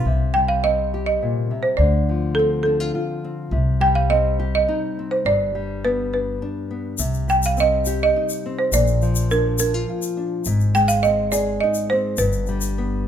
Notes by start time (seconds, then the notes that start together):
0.05 C2 C3
0.34 G3 G5
0.48 F5
0.64 C4 D#5
0.94 G4
1.06 D#5
1.22 A#2
1.51 C3
1.63 C5
1.77 D2 D3 D5
2.09 F3
2.35 A4
2.39 C4
2.63 D4 A4
2.80 F4
2.95 F4
3.24 C4
3.51 C2 C3
3.80 G3 G5
3.95 F5
4.10 C4 D#5
4.39 G4
4.55 D#5
4.68 D#4
4.99 C4
5.11 C5
5.25 G1 G2 D5
5.55 G3
5.84 B3 B4
6.13 D4 B4
6.42 D4
6.71 B3
6.98 C2 C3, shaker
7.14 shaker
7.28 G3 G5, shaker
7.43 F5, shaker
7.57 C4 D#5, shaker
7.85 G4, shaker
8.03 D#5
8.16 D#4
8.29 shaker
8.46 C4
8.59 C5
8.72 A#1 A#2 D5, shaker
8.87 shaker
9.02 F3, shaker
9.16 shaker
9.31 D4 A#4, shaker
9.58 D4 A#4, shaker
9.74 F4
9.90 F4
10.02 shaker
10.17 D4
10.45 G#1 G#2, shaker
10.60 shaker
10.75 G#3 G5, shaker
10.88 F5, shaker
11.03 C4 D#5, shaker
11.32 G#4 D5, shaker
11.61 D#4 D#5
11.74 shaker
11.90 C4 C5
12.17 G1 G2 B4, shaker
12.33 shaker
12.47 G3, shaker
12.61 shaker
12.78 B3